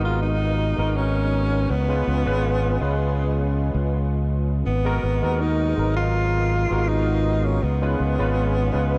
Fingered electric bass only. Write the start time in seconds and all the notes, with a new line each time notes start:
Already playing: G#1
0.78 G#1
1.70 C#2
2.07 C#2
2.26 G#1
2.81 C#2
3.75 C#2
4.67 G#1
5.04 G#1
5.23 D#2
5.78 G#1
6.71 G#1
7.63 C#2
8.00 C#2
8.19 G#1
8.74 C#2